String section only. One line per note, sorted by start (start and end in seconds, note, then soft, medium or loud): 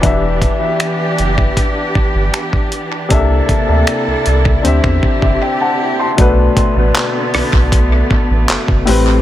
0.00 3.08 E3 medium
0.00 3.08 B3 medium
0.00 4.61 D4 medium
0.00 3.08 G4 medium
3.10 4.63 C3 medium
3.10 4.63 A#3 medium
3.10 6.15 E4 medium
3.10 4.63 A4 medium
4.64 6.17 D3 medium
4.64 6.17 C4 medium
4.64 6.17 G4 medium
6.19 8.85 D3 medium
6.19 9.22 A3 medium
6.19 8.85 B3 medium
8.88 9.22 G3 medium
8.88 9.22 C4 medium